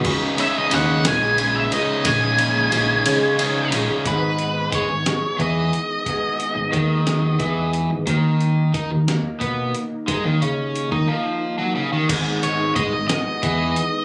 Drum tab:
CC |x-----------|------------|------------|------------|
RD |--x-x-x-x-x-|x-x-x-x-x-x-|------------|------------|
HH |------------|------------|x-x-x-x-x-x-|x-x-x-x-x-x-|
SD |------o-----|------------|------o-----|------o-----|
BD |o-----------|o-----------|o---o---o---|o---o---o---|

CC |------------|------------|x-----------|
RD |------------|------------|------------|
HH |x-x-x-x-x-x-|x-x-x-------|x-x-x-x-x-x-|
SD |------o-----|------------|------o-----|
BD |o---o---o---|o----o------|o---o---o---|